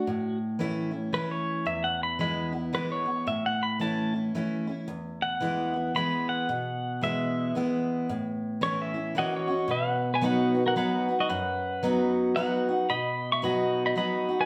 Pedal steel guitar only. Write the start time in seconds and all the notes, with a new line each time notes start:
Already playing: F#4
1.14 B4
1.31 C#5
1.67 E5
1.84 F#5
2.03 B5
2.21 B5
2.75 B4
2.92 C#5
3.28 E5
3.46 F#5
3.63 B5
3.81 A5
5.22 F#5
5.96 B5
6.29 F#5
7.04 E5
8.63 C#5
8.82 E5
9.18 F#4 D#5 F#5
9.36 C#5
9.71 B4 F#5
10.14 B4 G#5
10.24 B4 F#5
10.66 A#4 F#5
10.77 B4 F#5
11.20 F#4 D#5
11.29 B4 F#5
12.36 B4 F#5
12.90 D#5 B5
13.32 E5 C#6
13.44 D#5 B5
13.86 D#5 B5
13.98 D#5 B5
14.40 B4 G#5